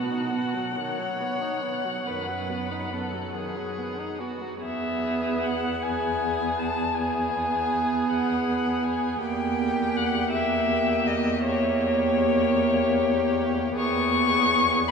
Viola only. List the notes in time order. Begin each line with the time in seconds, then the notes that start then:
Already playing: B3
0.10 D#4
0.32 B3
0.54 F#3
0.77 D#3
0.99 F#3
1.20 B3
1.41 D#4
1.63 B3
1.84 F#3
2.06 D#3
2.28 F#3
2.50 B3
2.71 D#4
2.92 B3
3.13 F#3
3.35 D#3
3.56 F#3
3.78 B3
3.99 D#4
4.20 B3
4.41 F#3
4.62 B3
5.81 B3
6.95 B3
9.21 A#3
10.34 A#3
11.45 A#3
13.77 B3
14.88 B3